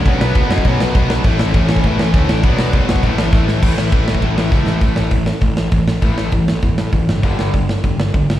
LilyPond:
<<
  \new Staff \with { instrumentName = "Lead electric guitar" } { \time 4/4 \key a \major \tempo 4 = 200 <cis' cis''>8 <b b'>4 <dis' dis''>8 <cis' cis''>8 <b b'>4 r8 | r4 <cis' cis''>8 <cis' cis''>8 <b b'>8 <cis' cis''>4 <d' d''>8~ | <d' d''>4 r2. | r1 |
\key g \lydian r1 | r1 | r1 | }
  \new Staff \with { instrumentName = "Distorted electric guitar" } { \clef bass \time 4/4 \key a \major <b, fis b>4 <b, fis b>4 <b, fis b>4 <b, fis b>4 | <a, e a>4 <a, e a>4 <a, e a>4 <a, e a>4 | <b, fis b>4 <b, fis b>4 <a, e a>4 <a, e a>4 | <a, e a>4 <a, e a>4 <a, e a>4 <a, e a>4 |
\key g \lydian <a, e a>4 <a, e>8 r8 <a, e>8 r8 <a, e>8 r8 | <a, e a>4 <a, e>8 r8 <a, e>8 r8 <a, e>8 r8 | <g, d g>4 <g, d>8 r8 <g, d>8 r8 <g, d>8 r8 | }
  \new Staff \with { instrumentName = "Distorted electric guitar" } { \clef bass \time 4/4 \key a \major <b, fis b>1 | <a, e a>1 | <b, fis b>2 <a, e a>2 | <a, e a>1 |
\key g \lydian r1 | r1 | r1 | }
  \new Staff \with { instrumentName = "Overdriven electric guitar" } { \clef bass \time 4/4 \key a \major <b, fis b>4 <b, fis b>4 <b, fis b>4 <b, fis b>4 | <a, e a>4 <a, e a>4 <a, e a>4 <a, e a>4 | <b, fis b>4 <b, fis b>4 <a, e a>4 <a, e a>4 | <a, e a>4 <a, e a>4 <a, e a>4 <a, e a>4 |
\key g \lydian <a, e a>4 <a, e>8 r8 <a, e>8 r8 <a, e>8 r8 | <a, e a>4 <a, e>8 r8 <a, e>8 r8 <a, e>8 r8 | <g, d g>4 <g, d>8 r8 <g, d>8 r8 <g, d>8 r8 | }
  \new Staff \with { instrumentName = "Picked electric bass" } { \clef bass \time 4/4 \key a \major b,,8 b,,8 fis,,8 fis,8 b,,8 b,,8 b,,8 b,,8 | a,,8 a,,8 a,,4 a,,8 a,,8 d,8 a,,8 | b,,8 b,,8 fis,,8 b,,8 a,,8 a,,8 a,,8 a,,8 | a,,8 a,,8 a,,8 a,,8 a,,8 a,,8 cis,8 a,,8 |
\key g \lydian a,,8 a,,8 a,,4 a,,8 a,,8 a,,8 a,,8 | a,,8 a,,8 a,,8 a,,8 e,8 a,8 fis,,8 g,,8 | g,,8 g,,8 g,,4 g,,8 g,,8 g,,8 g,,8 | }
  \new DrumStaff \with { instrumentName = "Drums" } \drummode { \time 4/4 <cymc bd>8 sn8 <cymc bd>8 sn16 bd16 <cymc bd>8 sn8 <cymc bd>8 sn8 | <cymc bd>8 sn8 <cymc bd>8 sn16 bd16 <cymc bd>8 sn8 <cymc bd>8 sn8 | <cymc bd>8 sn8 <cymc bd>8 sn16 bd16 <cymc bd>8 sn8 <bd sn>8 sn8 | <cymc bd>8 sn8 <bd cymr>8 sn16 bd16 <bd cymr>8 sn8 <bd sn>8 sn8 |
<hho bd>8 sn8 <hho bd>8 sn8 <hho bd>8 sn8 <hho bd>8 sn8 | <hho bd>8 sn8 <hho bd>8 sn8 <hho bd>8 sn8 <hho bd>8 sn8 | <hho bd>8 sn8 <hho bd>8 sn8 <hho bd>8 sn8 <hho bd>8 sn8 | }
>>